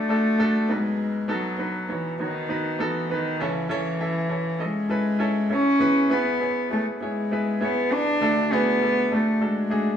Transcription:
0.00 0.66 D2 soft
0.00 0.66 D3 medium
0.00 0.09 A3 medium
0.00 0.74 A3 medium
0.00 0.09 D4 medium
0.00 0.10 F#4 medium
0.00 0.10 A4 medium
0.09 0.33 A3 medium
0.09 0.33 D4 medium
0.09 0.34 F#4 medium
0.09 0.34 A4 medium
0.38 0.63 A3 medium
0.38 0.63 D4 medium
0.38 0.64 F#4 medium
0.38 0.64 A4 medium
0.69 3.06 B1 medium
0.69 3.06 B2 medium
0.69 1.18 B3 medium
0.69 1.18 D#4 medium
0.69 1.18 F#4 medium
0.69 1.18 B4 medium
0.73 1.34 G#3 medium
1.28 1.53 B3 medium
1.28 1.53 D#4 medium
1.28 1.53 F#4 medium
1.28 1.53 A4 medium
1.33 1.94 F#3 medium
1.58 1.83 B3 medium
1.58 1.83 D#4 medium
1.58 1.84 F#4 medium
1.58 1.84 B4 medium
1.89 2.22 E3 medium
1.89 2.13 B3 medium
1.89 2.13 D#4 medium
1.89 2.14 F#4 medium
1.89 2.14 C#5 medium
2.19 2.84 D#3 medium
2.19 2.43 B3 medium
2.19 2.44 D#4 medium
2.19 2.44 F#4 medium
2.19 2.44 C#5 medium
2.49 2.73 B3 medium
2.49 2.73 D#4 medium
2.49 2.74 F#4 medium
2.49 2.74 B4 medium
2.79 3.15 E3 medium
2.79 3.03 B3 medium
2.79 3.04 D#4 medium
2.79 3.04 F#4 medium
2.79 3.04 A4 medium
3.09 3.34 B3 medium
3.09 3.34 D#4 medium
3.09 3.34 F#4 medium
3.09 3.35 B4 medium
3.14 3.43 D#3 medium
3.40 5.77 C#2 medium
3.40 5.77 C#3 medium
3.40 3.71 E3 medium
3.40 3.64 C#4 medium
3.40 3.64 E4 medium
3.40 3.65 A4 medium
3.40 3.65 C#5 medium
3.69 4.66 E3 medium
3.69 3.94 C#4 medium
3.69 3.94 E4 medium
3.69 3.94 A4 medium
3.69 3.94 C#5 medium
4.00 4.24 C#4 medium
4.00 4.24 E4 medium
4.00 4.24 A4 medium
4.00 4.24 E5 medium
4.29 4.54 C#4 medium
4.29 4.54 E4 medium
4.29 4.54 A4 soft
4.29 4.54 C#5 medium
4.58 4.83 C#4 medium
4.58 4.84 E4 medium
4.58 4.84 A4 medium
4.58 4.84 D#5 medium
4.64 5.55 G#3 medium
4.89 5.13 C#4 medium
4.89 5.14 E4 medium
4.89 5.14 A4 medium
4.89 5.14 B4 medium
5.19 5.43 C#4 medium
5.19 5.44 E4 medium
5.19 5.44 A4 medium
5.19 5.44 C#5 medium
5.50 5.74 C#4 medium
5.50 6.14 C#4 loud
5.50 5.74 E4 medium
5.50 5.74 A4 soft
5.50 5.74 C#5 medium
5.79 8.16 E2 medium
5.79 8.16 E3 medium
5.79 6.04 B3 medium
5.79 6.04 E4 medium
5.79 6.04 G#4 medium
5.79 6.04 B4 medium
6.10 6.34 B3 medium
6.10 6.72 B3 medium
6.10 6.34 E4 medium
6.10 6.34 G#4 medium
6.10 6.35 B4 medium
6.40 6.64 B3 medium
6.40 6.64 E4 medium
6.40 6.64 G#4 medium
6.40 6.65 C#5 medium
6.70 6.85 A3 medium
6.70 6.94 B3 medium
6.70 6.94 E4 soft
6.70 6.94 G#4 medium
6.70 6.95 C#5 medium
7.01 7.65 G#3 medium
7.01 7.24 B3 medium
7.01 7.25 E4 medium
7.01 7.25 G#4 medium
7.01 7.25 C#5 medium
7.31 7.55 B3 medium
7.31 7.55 E4 medium
7.31 7.55 G#4 medium
7.31 7.55 B4 medium
7.61 7.84 B3 medium
7.61 7.94 B3 medium
7.61 7.85 E4 medium
7.61 7.85 G#4 medium
7.61 7.85 C#5 medium
7.90 8.14 B3 medium
7.90 8.54 D4 loud
7.90 8.14 E4 medium
7.90 8.15 G#4 medium
7.90 8.15 B4 medium
8.21 9.97 D2 medium
8.21 9.97 D3 medium
8.21 8.44 A3 medium
8.21 8.45 D4 medium
8.21 8.45 F#4 medium
8.21 8.45 A4 medium
8.51 8.75 A3 medium
8.51 9.15 B3 medium
8.51 8.75 D4 medium
8.51 8.75 F#4 medium
8.51 8.75 G#4 loud
8.81 9.05 A3 medium
8.81 9.05 D4 medium
8.81 9.05 F#4 medium
8.81 9.05 A4 medium
9.11 9.35 A3 medium
9.11 9.45 A3 medium
9.11 9.35 D4 medium
9.11 9.35 F#4 medium
9.11 9.35 A4 medium
9.41 9.97 G#3 medium
9.41 9.64 A3 medium
9.41 9.64 D4 medium
9.41 9.65 F#4 medium
9.41 9.65 A4 medium
9.70 9.94 A3 medium
9.70 9.94 D4 medium
9.70 9.94 F#4 medium
9.70 9.95 G#4 medium

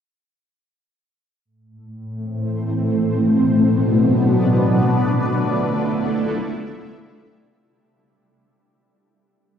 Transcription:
1.45 2.99 A2 medium
2.97 4.52 B2 medium
3.32 5.14 B3 medium
3.67 5.14 D4 medium
4.52 6.06 D3 medium
4.65 6.07 A3 medium
5.23 7.61 E4 medium
6.06 7.60 C3 medium

